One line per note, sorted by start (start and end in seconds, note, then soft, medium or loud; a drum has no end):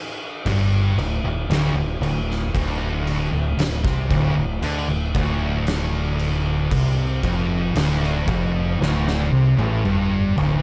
0.46 0.95 G1 loud
0.46 0.97 G2 loud
0.46 kick loud
0.46 crash medium
0.97 1.22 D1 medium
0.97 1.24 D2 medium
0.97 crash medium
1.24 1.48 D1 medium
1.24 1.50 D2 medium
1.49 1.74 D1 medium
1.49 1.75 D2 loud
1.49 snare loud
1.49 crash medium
1.74 1.99 D1 medium
1.74 2.00 D2 medium
2.01 2.50 D1 medium
2.01 2.44 D2 medium
2.01 crash medium
2.31 snare soft
2.55 3.29 D1 loud
2.55 3.31 D2 loud
2.55 kick loud
2.55 crash medium
3.07 crash medium
3.32 3.56 D1 medium
3.32 3.58 D2 medium
3.57 3.82 D1 medium
3.57 3.84 D2 medium
3.57 snare loud
3.57 crash medium
3.84 4.09 C2 loud
3.84 4.09 C3 loud
3.84 kick loud
3.84 snare soft
4.10 4.35 D1 loud
4.10 4.35 D2 loud
4.10 kick loud
4.10 crash medium
4.36 4.61 D1 medium
4.36 4.63 D2 medium
4.62 4.87 D2 loud
4.62 4.87 D3 loud
4.62 crash medium
4.89 5.13 D1 medium
4.89 5.15 D2 medium
5.15 6.67 D1 loud
5.15 6.70 D2 loud
5.15 kick loud
5.15 crash medium
5.67 snare loud
5.67 crash loud
6.19 crash medium
6.71 7.20 C2 loud
6.71 7.22 C3 loud
6.71 kick loud
6.71 crash loud
7.23 7.72 F1 loud
7.23 7.74 F2 loud
7.23 kick loud
7.23 crash medium
7.75 8.24 D1 loud
7.75 8.27 D2 loud
7.75 snare loud
7.75 crash loud
8.03 snare soft
8.28 8.76 F1 loud
8.28 8.79 F2 loud
8.28 kick loud
8.28 crash medium
8.80 9.29 D1 loud
8.80 9.31 D2 loud
8.80 snare medium
9.08 snare medium
9.32 9.57 C2 loud
9.32 9.57 C3 loud
9.58 9.83 A1 loud
9.58 9.83 A2 loud
9.58 high tom medium
9.85 10.33 G1 medium
9.85 10.36 G2 loud
9.85 mid tom loud
10.37 10.62 D1 loud
10.37 10.62 D2 loud
10.37 floor tom loud